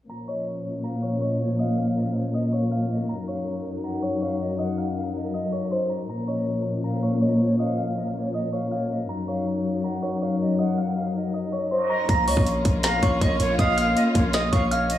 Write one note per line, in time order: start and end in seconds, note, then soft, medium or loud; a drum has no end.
0.09 3.06 A#2 medium
0.09 3.06 F3 medium
0.09 3.06 C#4 medium
0.09 9.05 A#4 medium
0.09 0.27 A#5 loud
0.09 0.27 A#6 medium
0.28 0.81 C#5 medium
0.28 0.46 D#5 medium
0.28 0.81 C#6 medium
0.84 1.19 F5 medium
0.84 1.01 A#5 medium
0.84 1.02 A#6 medium
1.03 1.20 C#5 medium
1.03 1.20 C#6 medium
1.21 1.57 C#5 medium
1.21 1.39 D#5 medium
1.21 1.57 C#6 medium
1.40 1.58 C#5 medium
1.59 1.77 D#5 medium
1.59 1.94 F5 loud
1.59 1.76 D#6 medium
1.78 2.31 F5 medium
1.78 2.30 F6 medium
1.96 2.14 D#5 medium
2.15 2.33 C#5 medium
2.33 2.51 D#5 medium
2.33 2.52 D#5 medium
2.33 2.51 D#6 medium
2.53 2.70 C#5 medium
2.53 2.70 F5 medium
2.53 2.70 C#6 medium
2.71 2.89 C#5 medium
2.71 3.07 F5 medium
2.71 3.07 F6 medium
2.90 3.08 D#5 medium
3.09 6.06 F#2 medium
3.09 6.06 F#3 medium
3.09 6.06 D#4 medium
3.09 3.26 A#5 loud
3.09 3.27 A#6 medium
3.28 3.81 C#5 medium
3.28 3.45 F5 medium
3.28 3.81 C#6 medium
3.84 4.19 F#5 medium
3.84 4.01 A#5 medium
3.84 4.02 A#6 medium
4.02 4.20 C#5 medium
4.02 4.20 C#6 medium
4.21 4.57 C#5 medium
4.21 4.39 F5 medium
4.21 4.57 C#6 medium
4.40 4.58 D#5 medium
4.59 4.77 D#5 medium
4.59 4.94 F#5 loud
4.59 4.76 D#6 loud
4.77 5.31 F5 medium
4.77 5.30 F6 medium
4.96 5.14 F5 medium
5.15 6.05 D#5 medium
5.34 5.52 D#5 medium
5.34 5.51 D#6 medium
5.52 5.70 C#5 medium
5.52 5.70 C#6 medium
5.71 5.89 C5 medium
5.71 5.89 C6 medium
5.90 6.07 A#5 medium
5.90 6.08 A#6 medium
6.09 9.06 A#2 medium
6.09 9.06 F3 medium
6.09 9.06 C#4 medium
6.09 6.27 A#5 loud
6.09 6.27 A#6 medium
6.28 6.81 C#5 medium
6.28 6.45 D#5 medium
6.28 6.81 C#6 medium
6.84 7.19 F5 medium
6.84 7.01 A#5 medium
6.84 7.02 A#6 medium
7.03 7.20 C#5 medium
7.03 7.20 C#6 medium
7.21 7.57 C#5 medium
7.21 7.39 D#5 medium
7.21 7.57 C#6 medium
7.40 7.58 C#5 medium
7.59 7.77 D#5 medium
7.59 7.94 F5 loud
7.59 7.76 D#6 medium
7.78 8.31 F5 medium
7.78 8.30 F6 medium
7.96 8.14 D#5 medium
8.15 8.33 C#5 medium
8.34 8.52 D#5 medium
8.34 8.51 D#6 medium
8.53 8.70 C#5 medium
8.53 8.71 F5 medium
8.53 8.70 C#6 medium
8.71 8.89 C#5 medium
8.71 9.07 F5 medium
8.71 9.07 F6 medium
8.90 9.08 D#5 medium
9.09 12.06 F#2 medium
9.09 12.06 F#3 medium
9.09 12.06 D#4 medium
9.09 12.06 A#4 medium
9.09 9.26 A#5 loud
9.09 9.27 A#6 medium
9.28 9.81 C#5 medium
9.28 9.46 F5 medium
9.28 9.81 C#6 medium
9.84 10.19 F#5 medium
9.84 10.01 A#5 medium
9.84 10.02 A#6 medium
10.02 10.20 C#5 medium
10.02 10.20 C#6 medium
10.22 10.57 C#5 medium
10.22 10.39 F5 medium
10.22 10.57 C#6 medium
10.40 10.58 D#5 medium
10.59 10.77 D#5 medium
10.59 10.94 F#5 loud
10.59 10.76 D#6 loud
10.78 11.31 F5 medium
10.78 11.30 F6 medium
10.96 11.14 F5 medium
11.15 12.05 D#5 medium
11.34 11.52 D#5 medium
11.34 11.51 D#6 medium
11.52 11.70 C#5 medium
11.52 11.70 C#6 medium
11.71 11.89 C5 medium
11.71 11.89 C6 medium
11.90 12.07 A#5 medium
11.90 12.08 A#6 medium
12.09 12.29 A#1 loud
12.09 14.98 A#3 medium
12.09 14.98 C#4 medium
12.09 14.98 F4 medium
12.09 12.27 A#5 loud
12.09 12.27 A#6 medium
12.09 kick loud
12.09 closed hi-hat medium
12.28 12.37 C#2 loud
12.28 12.81 C#5 medium
12.28 12.46 D#5 medium
12.28 12.81 C#6 medium
12.28 open hi-hat medium
12.37 12.64 A#1 loud
12.37 kick loud
12.47 closed hi-hat medium
12.65 13.01 A#1 loud
12.65 kick loud
12.65 closed hi-hat medium
12.83 13.19 F5 medium
12.83 13.01 A#5 medium
12.83 13.02 A#6 medium
12.83 finger snap medium
12.83 snare loud
12.83 closed hi-hat medium
13.03 13.21 A#1 loud
13.03 13.20 C#5 medium
13.03 13.20 C#6 medium
13.03 kick loud
13.03 closed hi-hat medium
13.21 13.39 A#1 loud
13.21 13.57 C#5 medium
13.21 13.39 D#5 medium
13.21 13.57 C#6 medium
13.21 kick medium
13.21 closed hi-hat medium
13.40 13.58 A#1 loud
13.40 13.58 C#5 medium
13.40 closed hi-hat medium
13.59 13.95 A#1 loud
13.59 13.77 D#5 medium
13.59 13.94 F5 loud
13.59 13.76 D#6 medium
13.59 kick loud
13.59 closed hi-hat medium
13.77 14.31 F5 medium
13.77 14.30 F6 medium
13.77 closed hi-hat medium
13.96 14.14 D#5 medium
13.96 closed hi-hat medium
14.15 14.51 A#1 loud
14.15 14.33 C#5 medium
14.15 kick loud
14.15 closed hi-hat medium
14.33 14.51 D#5 medium
14.33 14.52 D#5 medium
14.33 14.51 D#6 medium
14.33 finger snap medium
14.33 snare loud
14.33 closed hi-hat medium
14.52 14.98 A#1 loud
14.52 14.70 C#5 medium
14.52 14.70 F5 medium
14.52 14.70 C#6 medium
14.52 kick loud
14.52 closed hi-hat medium
14.71 14.89 C#5 medium
14.71 14.98 F5 medium
14.71 14.98 F6 medium
14.71 closed hi-hat medium
14.90 14.98 D#5 medium
14.90 closed hi-hat medium